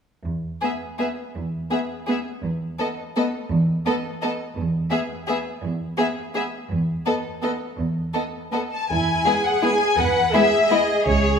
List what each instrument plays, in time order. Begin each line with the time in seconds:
0.25 cello section E2
0.61 viola section B3, violin section G#4 E5
0.99 viola section B3, violin section G#4 E5
1.35 cello section E2
1.71 viola section B3, violin section G#4 E5
2.08 viola section B3, violin section G#4 E5
2.44 cello section E2
2.79 viola section B3, violin section A4 D#5
3.16 viola section B3, violin section A4 D#5
3.50 cello section E2
3.86 viola section B3, violin section A4 D#5
4.22 viola section B3, violin section A4 D#5
4.56 cello section E2
4.91 viola section B3, violin section G#4 E5
5.28 viola section B3, violin section G#4 E5
5.62 cello section E2
5.98 viola section B3, violin section G#4 E5
6.34 viola section B3, violin section G#4 E5
6.69 cello section E2
7.05 viola section B3, violin section A4 D#5
7.43 viola section B3, violin section A4 D#5
7.78 cello section E2
8.14 viola section B3, violin section A4 D#5
8.52 viola section B3, violin section A4 D#5
8.72 violin section A5
8.89 double bass section E2, cello section E4, violin section G#5
9.26 viola section G#3 B3, violin section E4 G#4, cello section G#4
9.45 violin section F#5
9.63 viola section G#3 B3, violin section E4 G#4 G#5
9.99 double bass section E2, cello section B4, violin section F#5
10.34 viola section G#3 B3, violin section E4 G#4 E5, cello section G#4
10.70 viola section G#3 B3, violin section E4 G#4 D#5, cello section G#4
11.06 double bass section C#2, violin section C#5